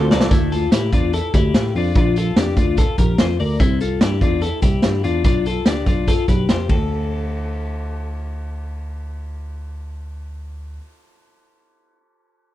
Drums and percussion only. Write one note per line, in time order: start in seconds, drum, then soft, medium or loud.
0.11 snare medium
0.21 snare loud
0.31 kick loud
0.31 closed hi-hat medium
0.52 closed hi-hat medium
0.72 snare loud
0.72 closed hi-hat loud
0.93 kick medium
0.93 closed hi-hat medium
1.13 closed hi-hat medium
1.34 kick medium
1.34 closed hi-hat medium
1.54 snare loud
1.54 closed hi-hat medium
1.76 open hi-hat medium
1.95 kick medium
1.95 closed hi-hat medium
2.16 closed hi-hat medium
2.36 snare loud
2.36 closed hi-hat loud
2.57 kick medium
2.57 closed hi-hat medium
2.77 kick medium
2.77 closed hi-hat medium
2.98 kick medium
2.98 closed hi-hat medium
3.18 snare loud
3.18 closed hi-hat medium
3.40 open hi-hat medium
3.60 kick medium
3.60 closed hi-hat medium
3.80 closed hi-hat medium
4.01 snare loud
4.01 closed hi-hat loud
4.21 kick medium
4.21 closed hi-hat medium
4.41 closed hi-hat medium
4.62 kick medium
4.62 closed hi-hat medium
4.82 snare medium
4.82 closed hi-hat medium
5.04 closed hi-hat medium
5.24 kick medium
5.24 closed hi-hat medium
5.46 closed hi-hat medium
5.66 snare loud
5.66 closed hi-hat loud
5.86 kick medium
5.86 closed hi-hat medium
6.07 kick medium
6.07 closed hi-hat medium
6.28 kick medium
6.28 closed hi-hat medium
6.49 snare medium
6.49 closed hi-hat medium
6.69 kick medium
6.69 ride medium